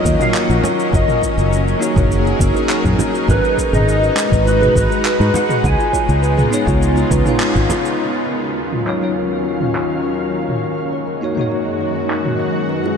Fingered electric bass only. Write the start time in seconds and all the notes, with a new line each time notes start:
0.05 D#2
0.49 A#1
0.93 F#1
1.38 F#1
1.96 F#1
2.40 F#1
2.85 F#2
3.28 G#1
3.73 G#1
4.32 G#1
4.76 G#1
5.20 G#2
5.64 C#2
6.09 C#2
6.67 C#2
7.11 C#2
7.55 G#1